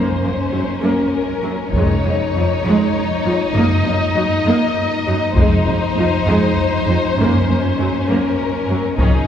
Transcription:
Already playing: F#1 A#3 C#4 C5
0.22 F#2 A#3
0.53 F#2 F#3
0.82 F#2 A#3 A#4
1.43 F#2 F#3
1.73 F1 F2 G#3 D#4 C#5, taiko
2.05 F2 G#3
2.34 F2 F3
2.64 F2 G#3
3.24 F2 F3
3.55 F#1 F#2 A#3 D#5
3.84 F#2 A#3
4.15 F#2 F#3
4.45 F#2 A#3
5.07 F#2 F#3
5.36 F1 F2 G#3 D#4 C5, taiko
5.67 F2 G#3
5.97 F2 F3
6.26 F2 G#3
6.87 F2 F3
7.17 F#1 F#2 A#3 C#4
7.48 F#2 A#3
7.78 F#2 F#3
8.08 F#2 A#3 A#4
8.68 F#2 F#3
8.99 F1 F2 C#4 D#4 G#4, taiko

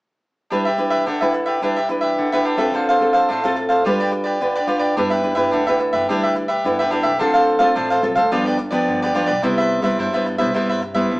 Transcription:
0.50 G3 D4 E4 G4 B4 E5
0.65 G4 B4 E5
0.78 D4 E4 B4
0.90 G4 B4 E5
1.06 D3 D4 G4 B4 E5
1.21 D4 E4 G4 B4 E5
1.34 muted cavaquinho stroke
1.46 G4 B4 E5
1.62 G3 D4 E4 G4 B4 E5
1.76 G4 B4 E5
1.89 D4 E4 B4, muted cavaquinho stroke
2.01 G4 B4 E5
2.18 D3
2.32 D4 E4 G4 B4 E5
2.45 D4 G4 B4 E5
2.57 C4 F4 G4 A4 B4 E5
2.74 D3 D4 A4 C5 F5
2.89 A4 C5 F5
3.00 C4 F4 A4
3.13 A4 C5 F5
3.29 A2 D4 A4 C5 F5
3.44 C4 F4 A4 C5 F5
3.56 muted cavaquinho stroke
3.69 A4 C5 F5
3.85 G3 D4 F4 G4 B4 D5
4.00 G4 B4 D5
4.12 muted cavaquinho stroke
4.24 G4 B4 D5
4.41 D3 D4 F4 B4
4.55 G4 B4 D5
4.67 D4 F4 G4 B4 D5
4.79 G4 B4 D5
4.97 G1 G3 D4 E4 G4 B4 E5
5.10 G4 B4 E5
5.23 D4 E4 B4
5.35 G1 D4 E4 G4 B4 E5
5.51 D2 D3 D4 G4 B4 E5
5.67 D4 E4 G4 B4 E5
5.80 muted cavaquinho stroke
5.93 G1 G4 B4 E5
6.09 D2 G3 D4 E4 G4 B4 E5
6.23 G4 B4 E5
6.36 muted cavaquinho stroke
6.48 G4 B4 E5
6.64 G1 D3 D4 E4 B4
6.79 G4 B4 E5
6.90 D4 E4 G4 B4 E5
7.03 C2 G4 B4 E5
7.19 D2 D3 C4 D4 F4 A4 C5 F5
7.34 A4 C5 F5
7.59 D2 C4 F4 A4 C5 F5
7.75 A1 A2 D4 A4 C5 F5
7.90 A4 C5 F5
8.02 C4 F4 A4, muted cavaquinho stroke
8.15 D2 A4 C5 F5
8.32 G1 G2 F3 B3 D4 F4 G4 B4 D5
8.46 G4 B4 D5
8.58 muted cavaquinho stroke
8.71 F3 B3 D4 G4 B4 D5
8.88 G1 D3
9.02 G4 B4 D5
9.14 F3 B3 D4 F4 G4 B4 D5
9.26 B1 G4 B4 D5
9.42 C2 C3 G3 B3 E4 B4 C5 E5
9.58 B4 C5 E5
9.82 C2 G3 B3 E4 B4 C5 E5
9.98 G2 E4 B4 C5 E5
10.13 G3 B3 E4 B4 C5 E5
10.26 muted cavaquinho stroke
10.38 C2 G3 B3 E4 B4 C5 E5
10.54 G2 C3 G3 B3 E4 B4 C5 E5
10.69 B4 C5 E5
10.82 muted cavaquinho stroke
10.94 G3 B3 E4 B4 C5 E5
11.11 C2 G2

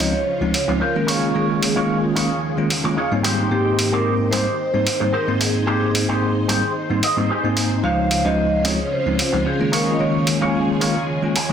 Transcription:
Already playing: C#3 C#4 F4 C6
0.00 C#2 F3 G#3 C4 C#4 D#4 F4 C5 C#5, open hi-hat
0.41 C#2 F3 G#3 C4 D#4, muted clean electric guitar stroke
0.53 C#5, muted clean electric guitar stroke, open hi-hat
0.68 C#2 F3 G#3 C4 D#4, muted clean electric guitar stroke
0.80 C#4 F4 A#4 C5
0.95 D#3 G#3 A#3 C#4 F4
1.07 D#3 D#4 F4 G#4 C#5, open hi-hat
1.35 D#3 G#3 A#3 C#4 F4 G#4
1.63 open hi-hat
1.76 D#3 G#3 A#3 C#4 D#4 F4 G#4 C#5
2.15 D#3 G#3 A#3 C#4 D#4 F4 G#4 C#5, open hi-hat
2.57 D#3 G#3 A#3 C#4 F4, muted clean electric guitar stroke
2.70 muted clean electric guitar stroke, open hi-hat
2.84 D#3 G#3 A#3 C#4 F4, muted clean electric guitar stroke
2.96 D#4 F4 G#4 C#5
3.11 G#2 G3 A#3 C4 D#4
3.23 D#4 G4 G#4 C5 G5, open hi-hat
3.51 G#2 A#3 C4 D#4 G4
3.79 open hi-hat
3.92 G#2 A#3 C4 D#4 G4 G#4 A#4 C5
4.31 G#2 G3 A#3 C4 D#4 G4 G#4 C5, open hi-hat
4.74 G#2 G3 A#3 C4 D#4, muted clean electric guitar stroke
4.85 C5, muted clean electric guitar stroke, open hi-hat
5.00 G#2 G3 A#3 C4 D#4, muted clean electric guitar stroke
5.13 G4 G#4 A#4 C5
5.27 G#2 A#3 C4 D#4
5.40 G#4, muted clean electric guitar stroke, open hi-hat
5.66 G#2 A#3 C4 D#4 G4 G#4 C5
5.95 open hi-hat
6.09 G#2 A#3 C4 D#4 G4 G#4 C5
6.48 G#2 G3 A#3 C4 D#4 G4 G#4 C5, open hi-hat
6.90 G#2 G3 A#3 C4 D#4, muted clean electric guitar stroke
7.03 D#5, muted clean electric guitar stroke, open hi-hat
7.17 G#2 G3 A#3 C4 D#4, muted clean electric guitar stroke
7.30 G4 G#4 C5 G#5
7.44 G#2 A#3 C4 D#4
7.56 muted clean electric guitar stroke, open hi-hat
7.83 C#2 C#3 F3 G#3 C#4 D#4 F4 C5 F5
8.11 open hi-hat
8.17 F5
8.25 C#2 F3 G#3 C#4 D#4 F4 C5 D#5
8.64 C#2 F3 G#3 C4 C#4 D#4 F4 G#4 C#5, open hi-hat
8.92 C5
9.06 C#2 F3 G#3 C4 D#4, muted clean electric guitar stroke
9.18 muted clean electric guitar stroke, open hi-hat
9.32 C#2 F3 G#3 C4 D#4, muted clean electric guitar stroke
9.45 C#4 F4 G#4 C5
9.60 D#3 G#3 A#3 C#4 F4
9.72 D#3 D#4 F4 G#4 A#4 C#5, open hi-hat
9.93 D#5
9.99 D#3 G#3 A#3 C#4 F4 C#5
10.27 open hi-hat
10.41 D#3 G#3 A#3 C#4 D#4 F4 G#4 C#5
10.80 D#3 G#3 A#3 C#4 D#4 F4 G#4 C#5, open hi-hat
11.22 D#3 G#3 A#3 C#4 F4, muted clean electric guitar stroke
11.35 G#5, muted clean electric guitar stroke, open hi-hat
11.49 D#3 G#3, muted clean electric guitar stroke

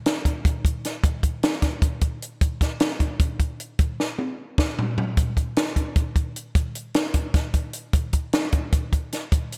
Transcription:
0.06 snare, closed hi-hat
0.25 kick, closed hi-hat
0.45 kick, closed hi-hat
0.65 kick, closed hi-hat
0.85 snare, closed hi-hat
1.03 kick, closed hi-hat
1.23 kick, closed hi-hat
1.43 snare, closed hi-hat
1.62 kick, snare, closed hi-hat
1.82 kick, closed hi-hat
2.01 kick, closed hi-hat
2.22 closed hi-hat
2.41 kick, closed hi-hat
2.61 kick, snare, closed hi-hat
2.80 snare, closed hi-hat
3.00 kick, closed hi-hat
3.20 kick, closed hi-hat
3.40 kick, closed hi-hat
3.60 closed hi-hat
3.79 kick, closed hi-hat
4.00 snare
4.19 high tom
4.58 kick, snare
4.79 floor tom
4.98 floor tom
5.17 kick, closed hi-hat
5.37 kick, closed hi-hat
5.56 snare, closed hi-hat
5.76 kick, closed hi-hat
5.96 kick, closed hi-hat
6.16 kick, closed hi-hat
6.36 closed hi-hat
6.55 kick, closed hi-hat
6.75 closed hi-hat
6.94 snare, closed hi-hat
7.14 kick, closed hi-hat
7.34 kick, snare, closed hi-hat
7.54 kick, closed hi-hat
7.73 closed hi-hat
7.93 kick, closed hi-hat
8.13 kick, closed hi-hat
8.33 snare, closed hi-hat
8.52 kick, closed hi-hat
8.72 kick, closed hi-hat
8.93 kick, closed hi-hat
9.12 snare, closed hi-hat
9.32 kick, closed hi-hat
9.52 closed hi-hat

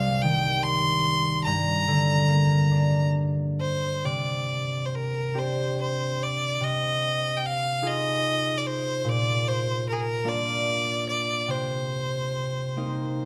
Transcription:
Already playing: C2 C3 C4 F5
0.22 D#3 G5
0.63 C6
1.44 G2 A#5
1.88 D3
2.29 A#3
2.71 D4
3.60 C5
4.05 C3 D5
4.85 C5
4.95 A#4
5.34 C4 D4 G4
5.38 C5
5.81 C5
6.23 D5
6.61 C3 D#5
7.37 G5
7.46 F5
7.82 D#4 F4 G#4
7.87 D#5
8.57 D5
8.66 C5
9.05 A#2 D5
9.48 C5
9.89 G#4 A#4
10.00 A#4
10.24 A#3 D4 F4
10.29 D5
11.08 D5
11.48 C3 C5
12.76 A#3 C4 D#4

